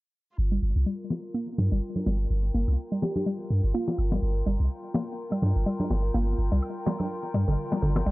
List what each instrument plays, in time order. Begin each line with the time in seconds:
0.38 sub bass G1, string section F4
0.52 synth arpeggio sound G3
0.62 sub bass G1
0.76 sub bass C2
0.86 synth arpeggio sound G3
0.97 string section A#4
1.10 low bongo
1.34 synth arpeggio sound A#3, high woodblock
1.53 string section G5
1.58 sub bass G2, low conga
1.72 sub bass G1, synth arpeggio sound G3
1.96 low conga
2.06 sub bass G1, synth arpeggio sound G3, low bongo
2.30 sub bass G1
2.54 sub bass G1, synth arpeggio sound A#3
2.68 sub bass C2, high woodblock
2.92 synth arpeggio sound G3
3.02 synth pluck G4, low bongo
3.16 synth pluck G4, low conga
3.26 synth arpeggio sound G3
3.50 sub bass G2
3.64 sub bass G1
3.74 synth arpeggio sound A#3, synth pluck F4
3.88 synth pluck F4, low bongo
3.98 sub bass G1, high woodblock
4.12 synth arpeggio sound G3, low bongo
4.22 sub bass G1
4.46 sub bass G1, synth arpeggio sound G3
4.60 sub bass C2
4.94 synth arpeggio sound A#3, low bongo
5.32 synth arpeggio sound G3, high woodblock
5.42 sub bass G2, low conga
5.56 sub bass G1
5.66 synth arpeggio sound G3
5.80 low conga
5.90 sub bass G1, low bongo
6.14 sub bass G1, synth arpeggio sound A#3
6.38 sub bass G1
6.52 sub bass C2, synth arpeggio sound G3
6.62 high woodblock
6.86 synth arpeggio sound G3, low bongo
7.00 low conga
7.34 sub bass G2, synth arpeggio sound G3
7.48 sub bass G1, synth arpeggio sound D3
7.72 synth arpeggio sound G3, low bongo
7.82 sub bass G1, synth arpeggio sound D3
7.96 low bongo, high woodblock
8.06 sub bass G1, synth arpeggio sound G3